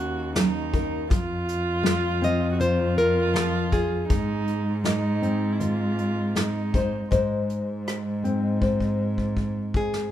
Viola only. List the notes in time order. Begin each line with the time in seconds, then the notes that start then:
Already playing: F#4
0.36 D#4
1.12 F4
2.52 F#4
2.58 F4
4.08 D#4
4.85 D#4
5.52 E4
5.59 F4
6.37 D#4